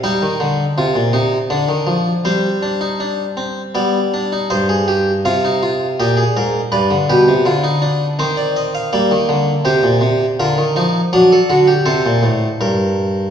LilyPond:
<<
  \new Staff \with { instrumentName = "Harpsichord" } { \time 3/4 \key c \minor \tempo 4 = 81 << { g''2. | c''2 d''4 | ees''4 f''4 ees''4 | d''8 b'4. c''16 d''16 ees''16 f''16 |
d''4 c''4 bes'4 | d''4 c''2 | } \\ { ees'4 f'8 ees'8 d'4 | c'8 d'16 ees'16 d'8 c'8 b8 d'16 ees'16 | c''16 aes'16 g'8 f'16 ees'16 f'8 g'16 aes'16 bes'8 | b'8 g'8 f'16 ees'16 d'8 c'4 |
bes4 g'4 f'8 ees'8 | d'16 a'16 fis'16 g'16 a'4 bes'4 | } >> }
  \new Staff \with { instrumentName = "Harpsichord" } { \clef bass \time 3/4 \key c \minor g16 ees16 d8 c16 bes,16 c8 d16 ees16 f8 | g2 g4 | g,4 c4 bes,8 aes,8 | g,16 d16 b,16 c16 d4 ees4 |
g16 ees16 d8 c16 bes,16 c8 d16 ees16 f8 | fis8 d8 c16 bes,16 a,8 g,4 | }
>>